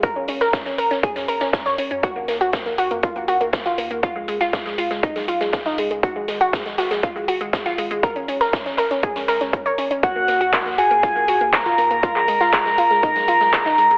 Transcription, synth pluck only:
X:1
M:4/4
L:1/16
Q:1/4=120
K:Gb
V:1 name="Synth pluck"
B D D B D D B D A D B D D d D D | G B, B, G B, B, G B, F B, G B, B, F B, B, | F A, A, F A, A, F A, E A, F A, A, E A, A, | G A, A, G A, A, G A, F A, G A, A, F A, A, |
B D D B D D B D A D B D D d D D | G B, B, G B, B, G B, F B, G B, B, F B, B, | F A, A, F A, A, F A, E A, F A, A, E A, A, |]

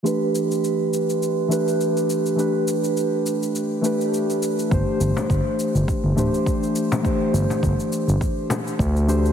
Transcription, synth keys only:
X:1
M:4/4
L:1/8
Q:"Swing 16ths" 1/4=103
K:G
V:1 name="Synth keys"
[E,A,DGB]4- [E,A,DGB] [E,A,DGB]3 | [E,A,DGB]4- [E,A,DGB] [E,A,DGB]3 | [E,A,DGc]4- [E,A,DGc] [E,A,DGc]3 | [E,A,DGc]4- [E,A,DGc] z2 [E,A,DGc] |]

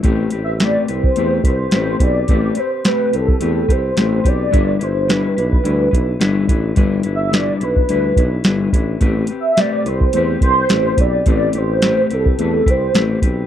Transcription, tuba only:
X:1
M:4/4
L:1/8
Q:"Swing 16ths" 1/4=107
K:Am
V:1 name="Tuba" clef=bass
A,,, A,,,2 C,, E,, C,, A,,, B,,, | A,,, z2 C,, E,, C,, A,,, B,,, | G,,, G,,,2 B,,, D,, B,,, G,,, A,,, | G,,, G,,,2 B,,, D,, B,,, G,,, A,,, |
A,,, z2 C,, E,, C,, A,,, B,,, | A,,, A,,,2 C,, E,, C,, A,,, B,,, |]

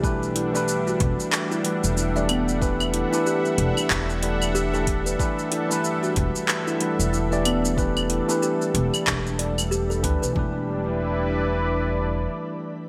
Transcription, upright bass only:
X:1
M:4/4
L:1/16
Q:"Swing 16ths" 1/4=93
K:Em
V:1 name="Upright bass" clef=bass
B,,,4- B,,, z E,,, z4 E,,,4- E,,,- | E,,,2 z4 E,,, z E,,,6- E,,, z | z6 E,,, z4 E,,,4- E,,,- | E,,,2 z4 E,,, z E,,,6 D,, B,,, |
E,,,12 z4 |]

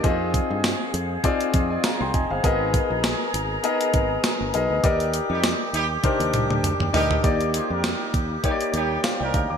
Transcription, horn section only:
X:1
M:4/4
L:1/16
Q:"Swing 16ths" 1/4=100
K:Eb
V:1 name="Horn section"
z16 | z16 | z3 [G,EG] z2 [G,EG] z6 z [G,EG]2 | z2 [FAc] [EGB]3 z2 [G,EG] z [G,EG]2 z [EGB]2 z |]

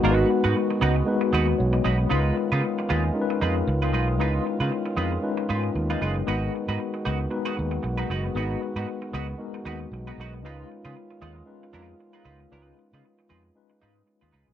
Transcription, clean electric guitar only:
X:1
M:4/4
L:1/16
Q:"Swing 16ths" 1/4=115
K:C#mix
V:1 name="Clean electric guitar"
[B,DFB]2 z [B,DFB] z2 [B,DFB]2 z2 [B,DFB]2 z2 [B,DFB]2 | [G,DEB]2 z [G,DEB] z2 [G,DEB]2 z2 [G,DEB]2 z [G,DEB] [G,DEB]2 | [G,DEB]2 z [G,DEB] z2 [G,DEB]2 z2 [G,DEB]2 z [G,DEB] [G,DEB]2 | [B,DFB]2 z [B,DFB] z2 [B,DFB]2 z [B,DFB]2 z2 [B,DFB] [B,DFB]2 |
[B,DFB]2 z [B,DFB] z2 [B,DFB]2 z2 [B,DFB]2 z [B,DFB] [B,DFB]2 | [G,DEB]2 z [G,DEB] z2 [G,DEB]2 z2 [G,DEB]2 z [G,DEB] [G,DEB]2 | [G,DEB]2 z [G,DEB] z2 [G,DEB]2 z2 [G,DEB]2 z [G,DEB] [G,DEB]2 |]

